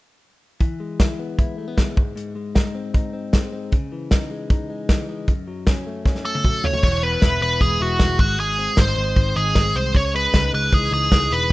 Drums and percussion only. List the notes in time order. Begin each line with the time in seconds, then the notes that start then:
0.60 kick, closed hi-hat
1.00 kick, snare, closed hi-hat
1.39 kick, closed hi-hat
1.78 kick, snare, closed hi-hat
1.97 kick
2.17 closed hi-hat
2.55 kick, snare, closed hi-hat
2.94 kick, closed hi-hat
3.33 kick, snare, closed hi-hat
3.72 kick, closed hi-hat
4.11 kick, snare, closed hi-hat
4.50 kick, closed hi-hat
4.89 kick, snare, closed hi-hat
5.28 kick, closed hi-hat
5.67 kick, snare, closed hi-hat
6.06 kick, snare
6.15 snare
6.35 high tom
6.44 kick, mid tom
6.64 floor tom
6.73 floor tom
6.83 kick, crash
7.22 kick, snare, closed hi-hat
7.61 kick, closed hi-hat
7.99 kick, snare, closed hi-hat
8.19 kick
8.38 closed hi-hat
8.77 kick, snare, closed hi-hat
9.16 kick, closed hi-hat
9.55 kick, snare, closed hi-hat
9.95 kick, closed hi-hat
10.14 open hi-hat
10.34 kick, snare, closed hi-hat
10.54 open hi-hat
10.73 kick, closed hi-hat
10.92 open hi-hat
11.12 kick, snare, closed hi-hat
11.31 open hi-hat